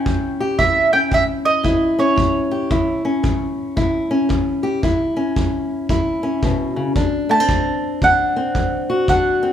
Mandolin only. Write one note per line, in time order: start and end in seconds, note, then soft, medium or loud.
0.00 0.58 G5 medium
0.59 0.92 E5 medium
0.93 1.11 G5 medium
1.14 1.23 E5 medium
1.45 1.95 D#5 medium
1.99 3.54 C#5 medium
7.31 8.03 A5 medium
8.04 9.08 F#5 medium
9.09 9.53 F#5 medium